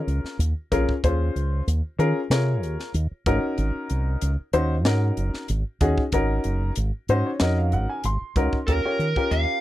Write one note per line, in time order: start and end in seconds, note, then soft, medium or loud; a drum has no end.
0.00 0.35 C#4 medium
0.00 0.35 F4 medium
0.00 0.35 G#4 medium
0.00 0.35 A#4 medium
0.07 0.20 C#2 medium
0.07 closed hi-hat medium
0.24 muted fingered electric bass stroke soft
0.24 snare soft
0.39 0.52 D#2 medium
0.39 closed hi-hat medium
0.72 0.85 A#1 medium
0.72 0.92 C#4 medium
0.72 0.91 F4 medium
0.72 0.92 G#4 medium
0.72 0.92 A#4 medium
0.72 kick medium
0.72 closed hi-hat medium
0.89 kick medium
1.04 1.28 D#2 loud
1.04 1.62 C#4 medium
1.04 1.62 F4 medium
1.04 1.62 G#4 medium
1.04 1.62 C5 medium
1.04 kick loud
1.04 closed hi-hat medium
1.36 1.60 C#2 medium
1.36 closed hi-hat medium
1.67 1.80 D#2 medium
1.67 closed hi-hat medium
1.99 2.12 D#3 loud
1.99 2.19 C#4 medium
1.99 2.19 F4 medium
1.99 2.19 G#4 medium
1.99 2.19 A#4 medium
1.99 closed hi-hat medium
2.30 2.62 C3 medium
2.30 2.89 F4 medium
2.30 2.89 G#4 medium
2.30 2.89 A#4 medium
2.30 2.89 C#5 medium
2.30 snare loud
2.30 closed hi-hat medium
2.62 2.76 D#2 medium
2.62 closed hi-hat medium
2.80 snare soft
2.94 3.07 D#2 medium
2.94 closed hi-hat medium
3.11 muted fingered electric bass stroke soft
3.26 3.39 G#1 loud
3.26 4.29 C#4 medium
3.26 4.29 D#4 medium
3.26 4.29 F#4 medium
3.26 4.29 A#4 medium
3.26 kick loud
3.26 closed hi-hat medium
3.58 3.71 G#1 loud
3.58 closed hi-hat medium
3.90 4.15 C2 medium
3.90 closed hi-hat medium
4.21 4.35 C#2 medium
4.21 closed hi-hat medium
4.53 4.85 D#2 medium
4.53 4.74 C#4 medium
4.53 4.74 D#4 medium
4.53 4.74 F#4 medium
4.53 4.74 C5 loud
4.53 closed hi-hat medium
4.85 5.10 G#2 medium
4.85 5.44 C#4 medium
4.85 5.44 D#4 medium
4.85 5.44 F#4 medium
4.85 5.44 A#4 medium
4.85 snare loud
4.85 closed hi-hat medium
5.17 5.30 F#1 medium
5.17 closed hi-hat medium
5.34 muted fingered electric bass stroke soft
5.34 snare soft
5.48 5.62 G#1 loud
5.48 closed hi-hat medium
5.81 5.94 D#2 medium
5.81 6.01 C#4 medium
5.81 6.01 D#4 medium
5.81 6.01 F#4 medium
5.81 6.01 G#4 medium
5.81 kick medium
5.81 closed hi-hat medium
5.98 kick medium
6.12 6.37 G#1 medium
6.12 6.71 C#4 medium
6.12 6.72 D#4 medium
6.12 6.72 F#4 medium
6.12 6.72 A#4 medium
6.12 kick medium
6.12 closed hi-hat medium
6.44 6.69 F#1 medium
6.44 closed hi-hat medium
6.75 6.90 G#1 medium
6.75 closed hi-hat medium
7.08 7.22 G#2 medium
7.08 7.29 C#4 medium
7.08 7.29 D#4 medium
7.08 7.29 F#4 medium
7.08 7.29 C5 medium
7.08 7.25 D#5 medium
7.08 closed hi-hat medium
7.26 7.40 C#5 medium
7.40 7.74 F2 medium
7.40 7.99 C#4 medium
7.40 7.99 D#4 medium
7.40 7.99 F#4 medium
7.40 7.99 A#4 medium
7.40 7.57 D#5 medium
7.40 snare loud
7.40 closed hi-hat medium
7.58 7.72 F5 medium
7.72 7.86 G#1 medium
7.72 7.88 F#5 medium
7.72 closed hi-hat medium
7.89 8.03 G#5 medium
8.04 8.17 G#1 medium
8.04 8.65 C6 medium
8.04 closed hi-hat medium
8.36 8.49 C#2 loud
8.36 8.56 C#4 medium
8.36 8.56 D#4 medium
8.36 8.56 F#4 medium
8.36 8.57 A#4 medium
8.36 kick medium
8.36 closed hi-hat medium
8.52 muted fingered electric bass stroke soft
8.52 kick medium
8.67 8.81 D#2 medium
8.67 8.78 C#4 medium
8.67 8.78 F4 medium
8.67 8.78 G4 medium
8.67 9.33 A#4 medium
8.67 8.79 A#4 medium
8.67 kick medium
8.67 closed hi-hat medium
8.85 9.03 C#4 medium
8.85 9.04 F4 medium
8.85 9.04 G4 medium
8.85 9.04 C#5 medium
8.99 9.12 D#3 medium
8.99 closed hi-hat medium
9.16 9.61 C#4 medium
9.16 9.61 F4 medium
9.16 9.61 G4 medium
9.16 9.61 A#4 medium
9.16 kick medium
9.31 9.44 D#2 medium
9.31 9.61 F5 medium
9.31 closed hi-hat medium